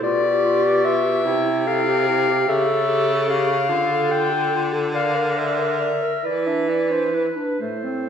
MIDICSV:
0, 0, Header, 1, 5, 480
1, 0, Start_track
1, 0, Tempo, 819672
1, 17, Time_signature, 6, 3, 24, 8
1, 2897, Tempo, 869565
1, 3857, Tempo, 931677
1, 4581, End_track
2, 0, Start_track
2, 0, Title_t, "Clarinet"
2, 0, Program_c, 0, 71
2, 15, Note_on_c, 0, 74, 123
2, 496, Note_on_c, 0, 76, 124
2, 505, Note_off_c, 0, 74, 0
2, 980, Note_on_c, 0, 77, 123
2, 988, Note_off_c, 0, 76, 0
2, 1459, Note_on_c, 0, 76, 120
2, 1468, Note_off_c, 0, 77, 0
2, 1926, Note_off_c, 0, 76, 0
2, 1930, Note_on_c, 0, 77, 113
2, 2410, Note_on_c, 0, 79, 117
2, 2419, Note_off_c, 0, 77, 0
2, 2737, Note_off_c, 0, 79, 0
2, 2899, Note_on_c, 0, 77, 109
2, 3138, Note_on_c, 0, 76, 97
2, 3147, Note_off_c, 0, 77, 0
2, 3619, Note_on_c, 0, 74, 97
2, 3627, Note_off_c, 0, 76, 0
2, 3737, Note_on_c, 0, 76, 84
2, 3745, Note_off_c, 0, 74, 0
2, 3859, Note_on_c, 0, 74, 89
2, 3867, Note_off_c, 0, 76, 0
2, 3975, Note_on_c, 0, 72, 84
2, 3983, Note_off_c, 0, 74, 0
2, 4090, Note_on_c, 0, 71, 81
2, 4097, Note_off_c, 0, 72, 0
2, 4331, Note_off_c, 0, 71, 0
2, 4334, Note_on_c, 0, 69, 85
2, 4581, Note_off_c, 0, 69, 0
2, 4581, End_track
3, 0, Start_track
3, 0, Title_t, "Clarinet"
3, 0, Program_c, 1, 71
3, 16, Note_on_c, 1, 67, 109
3, 734, Note_on_c, 1, 64, 89
3, 743, Note_off_c, 1, 67, 0
3, 977, Note_on_c, 1, 69, 84
3, 985, Note_off_c, 1, 64, 0
3, 1214, Note_on_c, 1, 67, 82
3, 1223, Note_off_c, 1, 69, 0
3, 1452, Note_off_c, 1, 67, 0
3, 1456, Note_on_c, 1, 69, 103
3, 2153, Note_off_c, 1, 69, 0
3, 2166, Note_on_c, 1, 69, 89
3, 2724, Note_off_c, 1, 69, 0
3, 2891, Note_on_c, 1, 70, 103
3, 3612, Note_on_c, 1, 71, 88
3, 3620, Note_off_c, 1, 70, 0
3, 4335, Note_on_c, 1, 72, 79
3, 4343, Note_off_c, 1, 71, 0
3, 4581, Note_off_c, 1, 72, 0
3, 4581, End_track
4, 0, Start_track
4, 0, Title_t, "Clarinet"
4, 0, Program_c, 2, 71
4, 16, Note_on_c, 2, 65, 81
4, 141, Note_on_c, 2, 67, 71
4, 150, Note_off_c, 2, 65, 0
4, 258, Note_on_c, 2, 65, 73
4, 267, Note_off_c, 2, 67, 0
4, 372, Note_on_c, 2, 67, 70
4, 381, Note_off_c, 2, 65, 0
4, 487, Note_off_c, 2, 67, 0
4, 491, Note_on_c, 2, 65, 74
4, 611, Note_on_c, 2, 67, 67
4, 620, Note_off_c, 2, 65, 0
4, 731, Note_off_c, 2, 67, 0
4, 734, Note_on_c, 2, 64, 72
4, 857, Note_on_c, 2, 67, 67
4, 866, Note_off_c, 2, 64, 0
4, 975, Note_on_c, 2, 64, 65
4, 984, Note_off_c, 2, 67, 0
4, 1099, Note_on_c, 2, 67, 68
4, 1108, Note_off_c, 2, 64, 0
4, 1210, Note_off_c, 2, 67, 0
4, 1214, Note_on_c, 2, 64, 71
4, 1333, Note_on_c, 2, 67, 64
4, 1341, Note_off_c, 2, 64, 0
4, 1448, Note_off_c, 2, 67, 0
4, 1451, Note_on_c, 2, 67, 80
4, 1566, Note_on_c, 2, 69, 70
4, 1575, Note_off_c, 2, 67, 0
4, 1683, Note_on_c, 2, 67, 70
4, 1692, Note_off_c, 2, 69, 0
4, 1807, Note_on_c, 2, 69, 67
4, 1816, Note_off_c, 2, 67, 0
4, 1917, Note_off_c, 2, 69, 0
4, 1921, Note_on_c, 2, 67, 70
4, 2046, Note_on_c, 2, 69, 66
4, 2055, Note_off_c, 2, 67, 0
4, 2154, Note_off_c, 2, 69, 0
4, 2158, Note_on_c, 2, 65, 67
4, 2279, Note_on_c, 2, 69, 63
4, 2288, Note_off_c, 2, 65, 0
4, 2397, Note_on_c, 2, 65, 66
4, 2406, Note_off_c, 2, 69, 0
4, 2521, Note_on_c, 2, 69, 66
4, 2530, Note_off_c, 2, 65, 0
4, 2643, Note_off_c, 2, 69, 0
4, 2647, Note_on_c, 2, 65, 68
4, 2769, Note_on_c, 2, 69, 64
4, 2777, Note_off_c, 2, 65, 0
4, 2886, Note_off_c, 2, 69, 0
4, 2890, Note_on_c, 2, 74, 72
4, 3010, Note_on_c, 2, 70, 63
4, 3018, Note_off_c, 2, 74, 0
4, 3127, Note_on_c, 2, 74, 62
4, 3136, Note_off_c, 2, 70, 0
4, 3248, Note_on_c, 2, 70, 57
4, 3257, Note_off_c, 2, 74, 0
4, 3364, Note_off_c, 2, 70, 0
4, 3367, Note_on_c, 2, 74, 66
4, 3489, Note_on_c, 2, 70, 57
4, 3497, Note_off_c, 2, 74, 0
4, 3606, Note_off_c, 2, 70, 0
4, 3609, Note_on_c, 2, 64, 60
4, 3735, Note_on_c, 2, 62, 60
4, 3743, Note_off_c, 2, 64, 0
4, 3850, Note_on_c, 2, 64, 53
4, 3858, Note_off_c, 2, 62, 0
4, 3967, Note_on_c, 2, 62, 52
4, 3975, Note_off_c, 2, 64, 0
4, 4081, Note_off_c, 2, 62, 0
4, 4084, Note_on_c, 2, 64, 55
4, 4205, Note_on_c, 2, 62, 52
4, 4212, Note_off_c, 2, 64, 0
4, 4324, Note_off_c, 2, 62, 0
4, 4327, Note_on_c, 2, 57, 61
4, 4451, Note_on_c, 2, 60, 56
4, 4459, Note_off_c, 2, 57, 0
4, 4581, Note_off_c, 2, 60, 0
4, 4581, End_track
5, 0, Start_track
5, 0, Title_t, "Baritone saxophone"
5, 0, Program_c, 3, 67
5, 13, Note_on_c, 3, 47, 83
5, 733, Note_on_c, 3, 48, 98
5, 742, Note_off_c, 3, 47, 0
5, 1447, Note_off_c, 3, 48, 0
5, 1451, Note_on_c, 3, 49, 91
5, 2162, Note_on_c, 3, 50, 84
5, 2171, Note_off_c, 3, 49, 0
5, 3522, Note_off_c, 3, 50, 0
5, 3616, Note_on_c, 3, 52, 78
5, 4164, Note_off_c, 3, 52, 0
5, 4335, Note_on_c, 3, 45, 68
5, 4581, Note_off_c, 3, 45, 0
5, 4581, End_track
0, 0, End_of_file